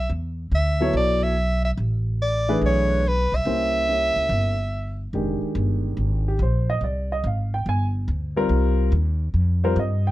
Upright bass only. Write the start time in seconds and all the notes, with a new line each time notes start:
0.10 E2
0.51 D2
0.93 B1
1.77 A1
2.62 B1
3.32 B1
3.45 C2
4.16 C#2
4.29 G1
5.13 F1
5.41 muted upright bass stroke
5.55 G1
5.97 G#1
6.39 A#1
6.81 C2
7.24 G#1
7.66 G1
8.08 D2
8.49 C2
8.92 D#2
9.34 F2
9.76 G2